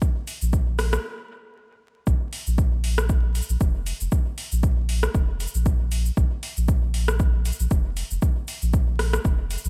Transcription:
0.02 kick, shaker
0.27 open hi-hat, shaker
0.42 sub bass A#1, shaker
0.53 kick, shaker
0.79 cross-stick, open hi-hat, shaker
0.93 cross-stick, shaker
2.07 sub bass A#1, kick, shaker
2.33 open hi-hat
2.47 sub bass A#1, shaker
2.58 kick, shaker
2.84 open hi-hat
2.98 cross-stick, shaker
3.09 kick, shaker
3.35 open hi-hat, shaker
3.42 shaker
3.49 sub bass A#1, shaker
3.61 sub bass F1, kick, shaker
3.86 open hi-hat, shaker
4.01 sub bass F1, shaker
4.12 kick, shaker
4.38 open hi-hat
4.52 sub bass A#1, shaker
4.63 kick, shaker
4.89 open hi-hat
5.03 cross-stick, shaker
5.15 sub bass F1, kick, shaker
5.40 open hi-hat, shaker
5.47 shaker
5.54 sub bass A#1, shaker
5.66 kick, shaker
5.92 open hi-hat, shaker
6.06 shaker
6.17 sub bass A#1, kick, shaker
6.43 open hi-hat
6.57 sub bass A#1, shaker
6.68 kick, shaker
6.94 open hi-hat
7.08 cross-stick, shaker
7.20 kick, shaker
7.45 open hi-hat, shaker
7.52 shaker
7.60 sub bass A#1, shaker
7.71 sub bass F1, kick, shaker
7.97 open hi-hat, shaker
8.11 sub bass F1, shaker
8.22 kick, shaker
8.48 open hi-hat, shaker
8.62 sub bass A#1, shaker
8.74 kick, shaker
8.99 cross-stick, open hi-hat
9.13 cross-stick, shaker
9.25 sub bass F1, kick, shaker
9.51 open hi-hat, shaker
9.58 shaker
9.65 sub bass A#1, shaker

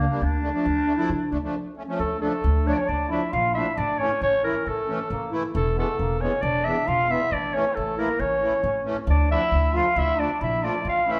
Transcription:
Already playing: clarinet A#3
0.10 accordion G3 A#3 D4
0.22 upright bass D2, clarinet D4
0.43 accordion A3 D4
0.54 accordion F3 A3 D4
0.66 upright bass D2
0.86 accordion A3 D4
0.97 accordion F3 A3 E4
1.10 upright bass D3
1.31 upright bass D2, accordion A3 D4
1.43 accordion F3 A3 D4
1.77 accordion A3 C#4
1.88 accordion F3 A3 C#4
1.98 upright bass D2, trombone A3, clarinet A4
2.19 accordion F3 A3 D4, trombone A3, clarinet A4
2.44 upright bass D2
2.66 accordion F3 A3 D4, clarinet C#5
2.73 clarinet D5
2.77 trombone C#4, clarinet C#5
2.86 upright bass D2, trombone D4, clarinet D5
3.09 accordion F3 A3 D4, trombone E4, clarinet E5
3.31 upright bass A#1, trombone F4, clarinet F5
3.54 accordion F3 A3 D4, trombone E4, clarinet E5
3.76 upright bass A1, trombone D4, clarinet D5
3.99 accordion E3 A3 C#4, trombone C#4, clarinet C#5
4.21 upright bass A1, trombone C#4, clarinet C#5
4.43 accordion E3 A3 E4, clarinet A#4
4.66 upright bass A1, trombone A3, clarinet A4
4.88 accordion E3 A3 C#4
5.10 upright bass A1, trombone A#3
5.31 accordion E3 A3 E4
5.54 upright bass E1, trombone A3, clarinet A4
5.76 accordion E3 G#3 B3, trombone A3, clarinet A4
5.99 upright bass E1, trombone A#3
6.21 accordion E3 G#3 B3, trombone C#4, clarinet C#5
6.42 upright bass E1, trombone D4, clarinet D5
6.65 accordion E3 G#3 B3, clarinet E5
6.87 upright bass E1, trombone F4, clarinet F5
7.09 accordion E3 G#3 B3, trombone E4, clarinet E5
7.31 upright bass A1, trombone D4, clarinet D5
7.54 accordion E3 A3 C#4, trombone C#4, clarinet C#5
7.75 upright bass A1, trombone A3, clarinet A4
7.98 accordion E3 A3 E4, trombone A#3, clarinet A#4
8.19 upright bass A1, trombone C#4, clarinet C#5
8.42 accordion E3 A3 E4
8.63 upright bass A1, trombone C#4
8.84 accordion E3 A3 C#4
9.07 upright bass D2, trombone D4, clarinet D5
9.29 accordion F3 A3 D4, trombone E4, clarinet E5
9.52 upright bass D2
9.74 accordion F3 A3 F4, trombone F4, clarinet F5
9.96 upright bass D2, trombone E4, clarinet E5
10.18 accordion F3 A3 D4, trombone D4, clarinet D5
10.41 upright bass A#1, trombone E4, clarinet E5
10.63 accordion F3 A3 F4, trombone D4, clarinet D5
10.84 upright bass A1, trombone F4
10.89 clarinet F5
11.06 accordion E3 A3 C#4, trombone E4
11.11 clarinet E5

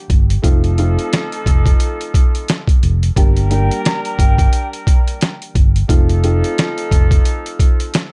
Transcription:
Already playing: upright piano G3 A#3 D4 G4
0.10 fingered electric bass G1, kick, closed hi-hat
0.30 closed hi-hat
0.42 fingered electric bass F1, horn section F3 D#4 A4, upright piano A3 C4 D#4 F4, kick, closed hi-hat
0.64 closed hi-hat
0.78 upright piano A3 C4 D#4 F4, closed hi-hat
0.99 closed hi-hat
1.13 snare, closed hi-hat
1.32 closed hi-hat
1.46 fingered electric bass F1, kick, closed hi-hat
1.66 kick, closed hi-hat
1.80 closed hi-hat
2.01 closed hi-hat
2.14 kick, closed hi-hat
2.35 closed hi-hat
2.48 snare, closed hi-hat
2.68 kick, closed hi-hat
2.83 fingered electric bass F1, closed hi-hat
3.03 closed hi-hat
3.16 fingered electric bass G1, upright piano G3 A#3 D4 G4, horn section G3 D4 A#4, kick, closed hi-hat
3.37 closed hi-hat
3.50 upright piano G3 A#3 D4 G4, flute G5, closed hi-hat
3.71 closed hi-hat
3.85 flute A#5, snare, closed hi-hat
4.05 flute A#5, closed hi-hat
4.18 fingered electric bass G1, flute G5, kick, closed hi-hat
4.38 kick, closed hi-hat
4.53 closed hi-hat
4.73 closed hi-hat
4.87 kick, closed hi-hat
5.08 closed hi-hat
5.21 snare, closed hi-hat
5.42 closed hi-hat
5.55 fingered electric bass G1, kick, closed hi-hat
5.76 closed hi-hat
5.88 fingered electric bass F1, horn section F3 D#4 A4, upright piano A3 C4 D#4 F4, kick, closed hi-hat
6.09 closed hi-hat
6.23 upright piano A3 C4 D#4 F4, closed hi-hat
6.44 closed hi-hat
6.58 snare, closed hi-hat
6.78 closed hi-hat
6.91 fingered electric bass F1, kick, closed hi-hat
7.11 kick, closed hi-hat
7.25 closed hi-hat
7.46 closed hi-hat
7.59 kick, closed hi-hat
7.80 closed hi-hat
7.94 snare, closed hi-hat

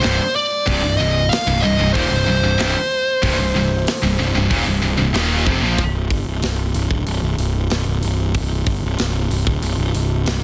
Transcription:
Already playing: lead electric guitar C5
0.03 picked electric bass C1, distorted electric guitar C2 G2, snare, open hi-hat
0.35 lead electric guitar D5
0.67 picked electric bass C1, distorted electric guitar C2 G2, kick, open hi-hat
0.84 picked electric bass C1, distorted electric guitar C2 G2
0.97 picked electric bass C1, distorted electric guitar C2 G2, lead electric guitar D#5
1.29 lead electric guitar F5, snare, open hi-hat
1.47 picked electric bass C1, distorted electric guitar C2 G2
1.61 picked electric bass C1, distorted electric guitar C2 G2, lead electric guitar D#5
1.79 picked electric bass C1, distorted electric guitar C2 G2
1.93 picked electric bass D#1, distorted electric guitar D#2 A#2, lead electric guitar C5, kick, open hi-hat
2.10 picked electric bass C1, distorted electric guitar C2 G2
2.27 picked electric bass C1, distorted electric guitar C2 G2
2.43 picked electric bass C1, distorted electric guitar C2 G2
2.58 picked electric bass C1, distorted electric guitar C2 G2, snare, open hi-hat
3.22 picked electric bass C1, distorted electric guitar C2 G2, kick, open hi-hat
3.38 picked electric bass C1, distorted electric guitar C2 G2
3.54 picked electric bass C1, distorted electric guitar C2 G2
3.87 snare, open hi-hat
4.02 picked electric bass C1, distorted electric guitar C2 G2
4.18 picked electric bass C1, distorted electric guitar C2 G2
4.34 picked electric bass C1, distorted electric guitar C2 G2
4.50 picked electric bass D#1, distorted electric guitar D#2 A#2, kick, open hi-hat
4.66 picked electric bass C1, distorted electric guitar C2 G2
4.82 picked electric bass C1, distorted electric guitar C2 G2
4.98 picked electric bass C1, distorted electric guitar C2 G2
5.13 picked electric bass D#1, distorted electric guitar D#2 A#2 D#3, snare, open hi-hat
5.45 picked electric bass F1, distorted electric guitar F2 C3, kick
5.61 picked electric bass A#1, distorted electric guitar A#2 F3
5.78 picked electric bass C1, kick, open hi-hat
6.10 picked electric bass G1, kick, open hi-hat
6.26 picked electric bass C1
6.42 picked electric bass C1, snare, open hi-hat
6.74 picked electric bass C1, open hi-hat
6.91 picked electric bass D1, kick
7.07 picked electric bass C1, open hi-hat
7.22 picked electric bass C1
7.37 picked electric bass C1, open hi-hat
7.70 picked electric bass C1, snare, open hi-hat
7.86 picked electric bass C1
8.03 picked electric bass C1, open hi-hat
8.35 picked electric bass C1, kick, open hi-hat
8.66 picked electric bass G1, kick, open hi-hat
8.84 picked electric bass C1
8.99 picked electric bass C1, snare, open hi-hat
9.31 picked electric bass C1, open hi-hat
9.47 picked electric bass D1, kick
9.62 picked electric bass C1, open hi-hat
9.78 picked electric bass C1
9.94 picked electric bass C1, open hi-hat
10.26 picked electric bass C1, snare, open hi-hat

